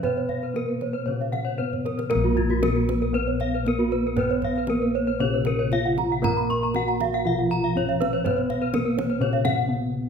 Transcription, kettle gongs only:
0.00 0.51 B2 soft
0.00 1.54 B4 medium
0.54 0.62 B3 soft
1.07 2.58 A#2 soft
1.59 1.67 B3 soft
2.10 3.61 A#4 medium
2.15 5.19 A#1 medium
2.63 2.71 B3 soft
3.67 3.75 B3 soft
4.18 5.69 B4 medium
4.69 4.77 B3 soft
5.21 6.72 A#2 medium
5.72 5.80 B3 soft
6.23 7.71 A#4 medium
6.75 6.83 B3 soft
7.26 8.69 B2 soft
7.75 7.83 B3 soft
8.24 9.64 B4 medium
8.73 8.81 B3 soft
9.21 10.09 A#2 soft
9.68 9.76 B3 soft

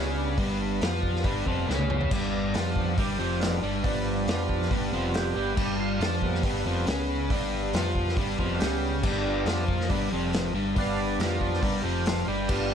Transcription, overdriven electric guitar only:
0.00 0.37 C#3 loud
0.00 0.38 C#4 medium
0.38 0.81 G2 loud
0.38 0.81 G3 loud
0.82 1.24 F3 loud
0.82 1.24 F4 loud
1.25 1.46 G2 medium
1.25 1.46 G3 medium
1.47 1.68 F2 medium
1.47 1.68 F3 medium
1.67 2.10 C#3 loud
1.67 2.11 C#4 loud
2.12 2.54 G2 medium
2.12 2.55 G3 loud
2.55 2.97 F3 loud
2.55 2.98 F4 loud
2.97 3.18 G2 medium
2.97 3.19 G3 loud
3.18 3.62 F2 medium
3.18 3.62 F3 medium
3.63 3.83 G2 medium
3.63 3.84 G3 loud
3.84 4.27 G2 loud
3.84 4.27 G3 loud
4.28 4.71 F3 medium
4.28 4.71 F4 loud
4.71 4.92 G2 medium
4.71 4.92 G3 loud
4.93 5.35 F2 medium
4.93 5.36 F3 loud
5.36 5.55 G2 medium
5.36 5.56 G3 loud
5.56 6.00 G2 loud
5.56 6.00 G3 loud
6.00 6.43 F3 loud
6.00 6.44 F4 loud
6.43 6.65 G2 medium
6.43 6.65 G3 medium
6.66 6.87 F2 medium
6.66 6.87 F3 loud
6.86 7.30 C#3 medium
6.86 7.30 C#4 loud
7.30 7.73 G2 loud
7.30 7.74 G3 loud
7.74 8.17 F3 loud
7.74 8.17 F4 loud
8.17 8.38 G2 medium
8.17 8.39 G3 loud
8.38 8.60 F2 medium
8.38 8.60 F3 loud
8.62 9.04 C#3 medium
8.62 9.04 C#4 medium
9.03 9.46 G2 loud
9.03 9.47 G3 loud
9.46 9.89 F3 loud
9.46 9.90 F4 loud
9.90 10.11 G2 medium
9.90 10.12 G3 loud
10.13 10.54 F2 medium
10.13 10.54 F3 medium
10.54 10.75 G2 medium
10.54 10.75 G3 loud
10.76 11.19 G2 medium
10.76 11.19 G3 loud
11.20 11.63 F3 loud
11.20 11.63 F4 loud
11.62 11.84 G2 loud
11.62 11.84 G3 loud
11.84 12.27 F2 medium
11.84 12.28 F3 loud
12.28 12.48 G2 loud
12.28 12.48 G3 loud
12.49 12.74 G2 medium
12.49 12.74 G3 loud

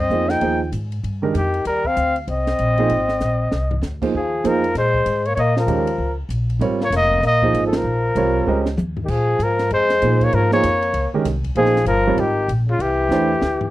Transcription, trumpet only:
0.00 0.31 D#5 medium
0.30 0.61 G5 medium
1.36 1.64 G4 medium
1.67 1.89 A#4 medium
1.87 2.17 F5 medium
2.31 3.80 D#5 medium
4.16 4.49 G#4 medium
4.47 4.77 A#4 medium
4.78 5.27 C5 medium
5.26 5.34 C#5 medium
5.35 5.40 C#5 medium
5.35 5.57 D#5 medium
5.59 6.16 A#4 medium
6.84 6.93 C#5 medium
6.96 7.23 D#5 loud
7.27 7.64 D#5 medium
7.67 7.78 A4 medium
7.76 8.68 A#4 medium
9.05 9.11 G4 medium
9.10 9.45 G#4 medium
9.43 9.72 A#4 medium
9.74 10.26 C5 medium
10.24 10.36 C#5 medium
10.35 10.53 A#4 medium
10.53 11.11 C#5 medium
11.57 11.86 G#4 loud
11.88 12.22 A#4 medium
12.20 12.50 G4 medium
12.71 12.83 F4 medium
12.81 13.71 G4 medium

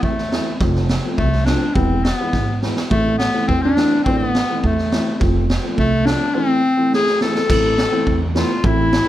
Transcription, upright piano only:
0.00 0.11 E3 medium
0.00 0.11 A3 medium
0.00 0.11 C4 medium
0.32 0.47 E3 medium
0.32 0.46 A3 medium
0.32 0.47 C4 medium
0.61 0.83 F3 medium
0.61 0.83 A3 medium
0.61 0.83 C4 medium
1.04 1.26 F3 medium
1.04 1.26 A3 medium
1.04 1.26 C4 medium
1.47 1.62 F3 medium
1.47 1.62 A3 medium
1.47 1.62 C4 medium
1.76 1.98 E3 medium
1.76 1.98 G#3 medium
1.76 1.98 B3 medium
2.21 2.42 E3 medium
2.21 2.42 G#3 soft
2.21 2.42 B3 medium
2.62 2.77 E3 medium
2.62 2.77 G#3 medium
2.62 2.77 B3 medium
2.91 3.13 E3 medium
2.91 3.13 A3 medium
2.91 3.13 C4 medium
3.34 3.56 E3 medium
3.34 3.56 A3 medium
3.34 3.56 C4 medium
3.76 3.91 E3 medium
3.76 3.92 A3 medium
3.76 3.92 C4 medium
4.06 4.28 E3 medium
4.06 4.28 A3 medium
4.06 4.28 D4 medium
4.49 4.71 E3 medium
4.49 4.71 A3 medium
4.49 4.71 C4 medium
4.92 5.07 E3 medium
4.92 5.07 A3 medium
4.92 5.07 C4 medium
5.19 5.42 F3 medium
5.19 5.42 A3 medium
5.19 5.42 C4 medium
5.63 5.85 F3 medium
5.63 5.85 A3 soft
5.63 5.85 C4 medium
6.07 6.22 F3 medium
6.07 6.22 A3 medium
6.07 6.22 C4 medium
6.35 6.57 E3 medium
6.35 6.57 A3 medium
6.35 6.57 C4 medium
6.77 6.99 E3 medium
6.77 7.00 A3 medium
6.77 6.99 C4 medium
7.22 7.36 E3 medium
7.22 7.36 A3 medium
7.22 7.36 C4 medium
7.49 7.71 E3 medium
7.49 7.71 A3 medium
7.49 7.71 C4 medium
7.91 8.14 E3 medium
7.91 8.14 A3 medium
7.91 8.13 C4 medium
8.35 8.49 E3 medium
8.35 8.50 A3 medium
8.35 8.49 B3 medium
8.63 8.85 E3 medium
8.63 8.85 A3 medium
8.63 8.85 C4 medium

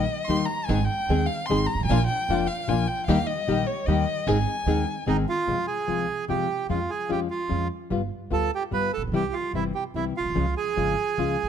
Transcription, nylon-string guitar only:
0.29 0.46 D#3 medium
0.29 0.46 G3 medium
0.29 0.46 A#3 medium
0.29 0.46 D#4 medium
0.29 0.46 G4 medium
0.69 0.78 D#3 medium
0.69 0.78 G#3 medium
0.69 0.78 C4 medium
0.69 0.79 D#4 medium
0.69 0.79 G#4 medium
1.09 1.27 D#3 medium
1.09 1.27 G#3 medium
1.09 1.27 C4 medium
1.09 1.27 D#4 medium
1.09 1.27 G#4 medium
1.50 1.67 D#3 medium
1.50 1.67 G#3 medium
1.50 1.67 C4 medium
1.50 1.67 D#4 medium
1.50 1.67 G#4 medium
1.91 1.99 F3 medium
1.91 1.99 A#3 medium
1.91 1.99 D4 medium
1.91 1.99 F4 medium
2.30 2.46 F3 medium
2.30 2.46 A#3 medium
2.30 2.46 D4 medium
2.30 2.47 F4 medium
2.68 2.85 F3 medium
2.68 2.85 A#3 medium
2.68 2.85 D4 medium
2.68 2.85 F4 medium
3.08 3.17 D#3 medium
3.08 3.17 G3 medium
3.08 3.17 A#3 medium
3.08 3.17 D#4 medium
3.08 3.17 G4 medium
3.48 3.65 D#3 medium
3.48 3.65 G3 medium
3.48 3.65 A#3 medium
3.48 3.65 D#4 medium
3.48 3.65 G4 medium
3.88 4.04 D#3 medium
3.88 4.04 G3 medium
3.88 4.04 A#3 medium
3.88 4.05 D#4 medium
3.88 4.04 G4 medium
4.27 4.36 D#3 medium
4.27 4.36 G#3 medium
4.27 4.36 C4 medium
4.27 4.36 D#4 medium
4.27 4.37 G#4 medium
4.67 4.84 D#3 medium
4.67 4.84 G#3 medium
4.67 4.84 C4 medium
4.67 4.84 D#4 medium
4.67 4.84 G#4 medium
5.07 5.24 D#3 medium
5.07 5.25 G#3 medium
5.07 5.24 C4 medium
5.07 5.25 D#4 medium
5.07 5.25 G#4 medium
5.47 5.57 C3 soft
5.47 5.57 F3 soft
5.47 5.57 G#3 soft
5.47 5.57 C4 medium
5.47 5.57 F4 medium
5.87 6.05 C3 soft
5.87 6.06 F3 soft
5.87 6.06 G#3 soft
5.87 6.06 C4 soft
5.87 6.06 F4 soft
6.28 6.46 C3 soft
6.28 6.46 F3 soft
6.28 6.47 G#3 soft
6.28 6.47 C4 soft
6.28 6.47 F4 soft
6.69 6.79 F3 soft
6.69 6.79 G#3 soft
6.69 6.79 C#4 medium
6.69 6.79 F4 medium
7.09 7.27 F3 soft
7.09 7.27 G#3 soft
7.09 7.27 C#4 soft
7.09 7.27 F4 medium
7.49 7.67 F3 soft
7.49 7.67 G#3 soft
7.49 7.67 C#4 medium
7.49 7.67 F4 soft
7.90 8.00 G3 medium
7.90 8.00 B3 medium
7.90 8.01 F4 medium
8.31 8.48 G3 soft
8.31 8.48 B3 medium
8.31 8.49 F4 medium
8.71 8.89 G3 soft
8.71 8.89 B3 medium
8.71 8.90 F4 medium
9.13 9.22 C3 medium
9.13 9.22 E3 medium
9.13 9.22 G3 medium
9.13 9.23 C4 medium
9.13 9.23 E4 medium
9.55 9.72 C3 soft
9.55 9.72 E3 soft
9.55 9.72 G3 medium
9.55 9.72 C4 soft
9.55 9.72 E4 medium
9.96 10.13 C3 soft
9.96 10.13 E3 soft
9.96 10.13 G3 soft
9.96 10.13 C4 medium
9.96 10.13 E4 soft
10.35 10.45 C#3 medium
10.35 10.45 F3 medium
10.35 10.45 G#3 medium
10.35 10.45 C#4 medium
10.35 10.45 F4 medium
10.76 10.94 C#3 soft
10.76 10.95 F3 soft
10.76 10.95 G#3 soft
10.76 10.95 C#4 medium
10.76 10.95 F4 medium
11.18 11.35 C#3 soft
11.18 11.36 F3 medium
11.18 11.36 G#3 medium
11.18 11.36 C#4 medium
11.18 11.36 F4 medium

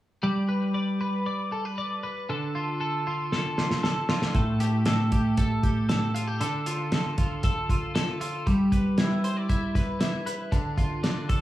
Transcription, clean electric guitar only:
0.23 2.29 G3 medium
0.23 0.74 D5 medium
0.49 1.00 B4 medium
0.74 1.26 D5 medium
1.01 1.52 B4 medium
1.26 1.78 D5 medium
1.52 1.65 A4 soft
1.65 2.02 B4 soft
1.78 2.29 D5 medium
2.03 2.34 B4 soft
2.29 4.35 D3 medium
2.29 2.80 A4 medium
2.55 3.06 F4 medium
2.81 3.32 A4 medium
3.07 3.57 F4 medium
3.33 3.83 A4 medium
3.58 4.08 F4 soft
3.83 4.35 A4 medium
4.09 4.40 F4 medium
4.35 6.41 A2 medium
4.35 4.86 A4 medium
4.60 5.11 G4 medium
4.86 5.37 A4 medium
5.12 5.62 G4 soft
5.38 5.88 A4 medium
5.63 6.14 G4 soft
5.89 6.41 A4 medium
6.15 6.27 F4 medium
6.28 6.46 G4 soft
6.41 8.46 D3 medium
6.41 6.91 A4 medium
6.66 7.17 F4 medium
6.93 7.43 A4 medium
7.18 7.69 F4 medium
7.44 7.94 A4 medium
7.70 8.20 F4 soft
7.95 8.51 A4 medium
8.21 8.52 F4 medium
8.47 10.51 G3 medium
8.72 9.74 B4 medium
8.99 9.48 E4 medium
9.24 9.37 C5 medium
9.37 10.57 D5 medium
9.49 9.99 E4 medium
9.75 10.25 B4 soft
10.00 10.57 E4 soft
10.26 10.57 B4 soft
10.52 11.41 D3 medium
10.78 11.41 F4 medium
11.03 11.41 D4 soft
11.29 11.41 A4 medium

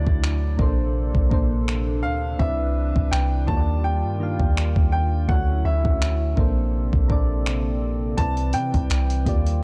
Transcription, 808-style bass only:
0.07 0.57 D2 loud
0.59 1.12 A#1 loud
1.15 2.05 A#1 loud
2.03 2.38 D2 medium
2.40 2.93 C2 loud
2.96 3.11 C2 medium
3.12 3.47 C2 loud
3.48 4.05 D#2 loud
4.04 4.38 G2 medium
4.40 4.74 D#2 loud
4.76 5.27 D#2 loud
5.29 5.64 D2 loud
5.65 5.84 D2 loud
5.85 6.35 D2 loud
6.37 6.91 A#1 loud
6.93 8.14 A#1 loud
8.18 8.55 C2 loud
8.54 8.73 C3 loud
8.74 8.89 C2 loud
8.90 9.25 C2 loud
9.26 9.63 D#2 loud

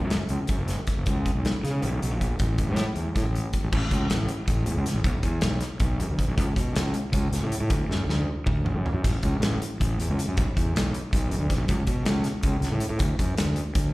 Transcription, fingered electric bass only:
0.00 0.16 F#2 medium
0.29 0.37 C#2 medium
0.49 0.57 F#2 loud
0.59 0.74 F#1 medium
0.97 1.04 F#1 medium
1.06 1.29 C#2 loud
1.35 1.50 B1 medium
1.64 1.84 C#3 medium
1.83 1.98 B1 medium
2.02 2.12 B1 medium
2.12 2.34 A#1 medium
2.40 2.70 A1 medium
2.68 2.83 A2 medium
2.96 3.03 E2 medium
3.15 3.23 A2 loud
3.24 3.39 A1 medium
3.63 3.70 A1 medium
3.72 3.80 A1 loud
3.91 4.06 C#2 medium
4.11 4.25 A1 medium
4.48 4.63 A1 medium
4.66 4.74 E2 medium
4.76 4.84 C#2 medium
4.94 5.02 A1 medium
5.04 5.12 B1 loud
5.23 5.39 E2 medium
5.43 5.58 B1 medium
5.80 5.96 B1 medium
6.00 6.08 F#2 medium
6.10 6.17 D2 medium
6.28 6.36 B1 medium
6.38 6.45 C#2 loud
6.56 6.72 B2 medium
6.75 6.90 C#2 medium
7.12 7.28 C#2 medium
7.32 7.40 C#2 medium
7.43 7.50 A2 medium
7.61 7.68 A2 medium
7.71 7.78 D2 loud
7.88 8.04 F#2 medium
8.06 8.22 D2 medium
8.47 8.62 D2 loud
8.65 8.73 A1 medium
8.74 8.82 F#2 medium
8.93 9.01 F#2 medium
9.04 9.11 A1 loud
9.23 9.38 C#2 medium
9.40 9.56 A1 medium
9.80 9.95 A1 loud
9.99 10.06 E2 medium
10.08 10.16 C#2 medium
10.28 10.35 F#2 medium
10.38 10.45 B1 loud
10.57 10.71 E2 medium
10.75 10.90 B1 medium
11.13 11.28 B1 medium
11.30 11.38 F#2 medium
11.39 11.47 D2 medium
11.57 11.65 B1 medium
11.69 11.76 C#2 loud
11.87 12.02 B2 medium
12.05 12.20 C#2 medium
12.44 12.59 C#2 medium
12.60 12.69 C#2 medium
12.71 12.79 A2 medium
12.89 12.98 A2 medium
13.00 13.08 D2 loud
13.19 13.34 F#2 medium
13.38 13.53 D2 medium
13.76 13.91 D2 medium

